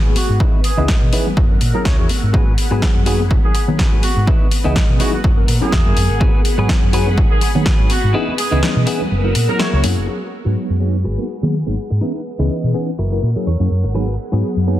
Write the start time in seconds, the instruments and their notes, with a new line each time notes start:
Already playing: clean electric guitar F#4 G#4 B4, string machine G#4 F#5 B5
0.05 fingered electric bass G#1, tine electric piano F#3 A#3 B3 D#4 G#4, tambourine
0.16 horn section F#4, open hi-hat, tambourine, high conga
0.29 fingered electric bass G#2, tambourine
0.40 tine electric piano E3 B3 C#4 D#4 G#4, clean electric guitar D#4 E4 B4, string machine B4 D#6, kick
0.53 tambourine, high conga
0.64 horn section G#4, open hi-hat, tambourine
0.77 fingered electric bass C#2, tine electric piano E3 B3 C#4 G#4 D#5, clean electric guitar D#4 E4 B4, tambourine
0.88 kick, snare, tambourine, high conga, low conga
1.02 fingered electric bass B2, tambourine
1.13 tine electric piano E3 B3 C#4 D#4 G#4, clean electric guitar D#4 E4 B4, open hi-hat, tambourine
1.26 tambourine, high conga, low conga
1.37 fingered electric bass F#1, string machine A#4 F#5 E6, muted clean electric guitar stroke, kick
1.49 tine electric piano F#3 A#3 C#4 E4 A#4, tambourine
1.61 fingered electric bass A#2, muted clean electric guitar stroke, open hi-hat, tambourine
1.74 tine electric piano F#3 A#3 C#4 E4 G#4, horn section A#4, tambourine, high conga
1.85 fingered electric bass C#2, clean electric guitar E4 F#4 A#4, horn section C#5, kick, snare
1.98 fingered electric bass E2, tine electric piano F#3 A#3 C#4 E4 G#4, horn section C#5, tambourine
2.09 open hi-hat, tambourine, high conga
2.23 fingered electric bass G#2, tambourine
2.33 tine electric piano F#3 A#3 B3 D#4 G#4, clean electric guitar F#4 G#4 B4, string machine G#4 B5, kick
2.47 tambourine, high conga
2.58 open hi-hat, tambourine
2.71 fingered electric bass G#2, tine electric piano F#3 B3 D#4 G#4, clean electric guitar F#4 G#4 B4, tambourine
2.82 kick, snare, tambourine, high conga, low conga
2.95 fingered electric bass F#2, tambourine
3.06 tine electric piano F#3 A#3 B3 D#4 G#4, clean electric guitar F#4 G#4 B4, open hi-hat, tambourine
3.20 tambourine, high conga, low conga
3.30 fingered electric bass G#1, muted clean electric guitar stroke, kick, tambourine
3.44 tine electric piano F#3 A#3 B3 D#4 A#4, horn section G#4, tambourine
3.54 muted clean electric guitar stroke, open hi-hat, tambourine
3.68 fingered electric bass D#3, tine electric piano F#3 A#3 B3 D#4 G#4, tambourine, high conga
3.79 clean electric guitar F#4 G#4 B4, kick, snare
3.92 fingered electric bass G#1, tine electric piano F#3 A#3 B3 D#4 G#4, tambourine
4.03 horn section F#4, open hi-hat, tambourine, high conga
4.16 fingered electric bass G#2, tambourine
4.27 tine electric piano E3 B3 C#4 D#4 G#4, clean electric guitar D#4 E4 B4, string machine B4 D#6, kick, tambourine
4.41 tambourine, high conga
4.51 open hi-hat, tambourine
4.64 fingered electric bass C#2, tine electric piano E3 B3 C#4 G#4 D#5, clean electric guitar D#4 E4 B4, tambourine
4.75 kick, snare, tambourine, high conga, low conga
4.89 fingered electric bass B2, tambourine
4.99 tine electric piano E3 B3 C#4 D#4 G#4, clean electric guitar D#4 E4 B4, horn section F#4, open hi-hat, tambourine
5.12 horn section F#4, tambourine, high conga, low conga
5.24 fingered electric bass F#1, string machine A#4 F#5 E6, muted clean electric guitar stroke, kick
5.37 tine electric piano F#3 A#3 C#4 E4 A#4, tambourine
5.48 fingered electric bass A#2, muted clean electric guitar stroke, open hi-hat, tambourine
5.61 tine electric piano F#3 A#3 C#4 E4 G#4, horn section G#4, muted fingered electric bass stroke, tambourine, high conga
5.72 fingered electric bass E2, clean electric guitar E4 F#4 A#4, kick, snare
5.85 fingered electric bass F#2, tine electric piano F#3 A#3 C#4 E4 G#4
5.96 fingered electric bass F#2, open hi-hat, tambourine, high conga
6.10 fingered electric bass G#1, tambourine
6.20 tine electric piano F#3 A#3 B3 D#4 G#4, clean electric guitar F#4 G#4 B4, string machine G#4 B5, kick
6.35 tambourine, high conga
6.45 open hi-hat, tambourine
6.58 fingered electric bass G#2, tine electric piano F#3 B3 D#4 G#4, clean electric guitar F#4 G#4 B4, tambourine
6.68 kick, snare, tambourine, high conga, low conga
6.82 fingered electric bass F#2, tambourine
6.93 tine electric piano F#3 A#3 B3 D#4 G#4, clean electric guitar F#4 G#4 B4, open hi-hat, tambourine
7.07 tambourine, high conga, low conga
7.17 fingered electric bass G#1, muted clean electric guitar stroke, kick
7.30 tine electric piano F#3 A#3 B3 D#4 A#4, horn section G#4, tambourine
7.41 muted clean electric guitar stroke, open hi-hat, tambourine
7.55 fingered electric bass D#3, tine electric piano F#3 A#3 B3 D#4 G#4, tambourine, high conga
7.65 clean electric guitar F#4 G#4 B4, kick, snare
7.78 fingered electric bass G#1, tine electric piano F#3 A#3 B3 D#4 G#4, tambourine
7.90 horn section F#4, open hi-hat, tambourine, high conga
8.04 fingered electric bass G#2, tambourine
8.14 tine electric piano E3 B3 C#4 D#4 G#4, clean electric guitar D#4 E4 B4, string machine B4 D#6, tambourine
8.28 tambourine, high conga
8.38 horn section G#4, open hi-hat, tambourine
8.51 fingered electric bass C#2, tine electric piano E3 B3 C#4 G#4 D#5, clean electric guitar D#4 E4 B4, tambourine
8.62 snare, tambourine, high conga, low conga
8.76 fingered electric bass B2, tambourine
8.86 tine electric piano E3 B3 C#4 D#4 G#4, clean electric guitar D#4 E4 B4, open hi-hat, tambourine
9.00 tambourine, high conga, low conga
9.11 fingered electric bass F#1, string machine A#4 F#5 E6, muted clean electric guitar stroke, tambourine
9.24 tine electric piano F#3 A#3 C#4 E4 A#4, tambourine
9.35 fingered electric bass A#2, muted clean electric guitar stroke, open hi-hat, tambourine
9.48 tine electric piano F#3 A#3 C#4 E4 G#4, horn section A#4, tambourine, high conga
9.59 clean electric guitar E4 F#4 A#4, horn section C#5, snare, tambourine
9.73 fingered electric bass C#2, horn section C#5, tambourine
9.83 fingered electric bass F#2, tine electric piano F#3 A#3 C#4 E4 G#4, open hi-hat, tambourine, high conga
9.97 fingered electric bass F#1, tambourine
10.07 tine electric piano F#3 A#3 B3 D#4 G#4, clean electric guitar F#4 G#4 B4, string machine G#4 F#5 B5
10.45 fingered electric bass G#2, tine electric piano F#3 B3 D#4 G#4, clean electric guitar F#4 G#4 B4
10.70 fingered electric bass F#2
10.80 tine electric piano F#3 A#3 B3 D#4 G#4, muted clean electric guitar stroke
11.04 fingered electric bass G#1, clean electric guitar F#4 G#4 B4
11.18 tine electric piano F#3 A#3 B3 D#4 A#4
11.42 fingered electric bass D#3, tine electric piano F#3 A#3 B3 D#4 G#4
11.66 fingered electric bass G#1, tine electric piano F#3 A#3 B3 D#4 G#4, muted clean electric guitar stroke
11.90 fingered electric bass G#2, muted clean electric guitar stroke
12.01 tine electric piano E3 B3 C#4 D#4 G#4, clean electric guitar D#4 E4 B4, string machine B4 D#6
12.39 fingered electric bass C#2, tine electric piano E3 B3 C#4 G#4 D#5, clean electric guitar D#4 E4 B4
12.64 fingered electric bass B2
12.74 tine electric piano E3 B3 C#4 D#4 G#4, muted clean electric guitar stroke
12.99 fingered electric bass F#1, clean electric guitar E4 F#4 A#4, string machine A#4 F#5 E6
13.12 tine electric piano F#3 A#3 C#4 E4 A#4
13.23 fingered electric bass A#2
13.36 tine electric piano F#3 A#3 C#4 E4 G#4, muted fingered electric bass stroke
13.47 fingered electric bass E2, clean electric guitar C#5
13.60 fingered electric bass F#2, tine electric piano F#3 A#3 C#4 E4 G#4, muted clean electric guitar stroke
13.71 fingered electric bass F#2
13.84 fingered electric bass G#1, muted clean electric guitar stroke
13.94 tine electric piano F#3 A#3 B3 D#4 G#4, clean electric guitar F#4 G#4 B4, string machine G#4 B5
14.32 fingered electric bass G#2, tine electric piano F#3 B3 D#4 G#4, clean electric guitar F#4 G#4 B4
14.56 fingered electric bass F#2
14.67 tine electric piano F#3 A#3 B3 D#4 G#4, muted clean electric guitar stroke